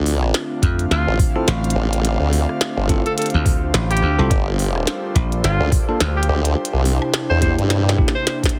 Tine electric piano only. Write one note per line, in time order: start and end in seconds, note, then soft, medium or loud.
1.36 1.46 C4 loud
1.36 1.46 E4 medium
1.36 1.46 F4 medium
1.36 1.46 A4 loud
2.89 3.04 C4 medium
2.89 3.04 E4 medium
2.89 3.04 F4 medium
2.89 3.04 A4 medium
4.19 4.29 C4 medium
4.19 4.29 E4 medium
4.19 4.29 F4 medium
4.19 4.29 A4 loud
5.89 5.99 A#3 medium
5.89 5.99 D4 medium
5.89 5.99 F4 medium
5.89 5.99 A4 loud
7.42 7.57 A#3 medium
7.42 7.57 D4 medium
7.42 7.57 E4 medium
7.42 7.57 G4 medium
7.98 8.13 A#3 medium
7.98 8.13 D4 medium
7.98 8.13 E4 medium
7.98 8.13 G4 loud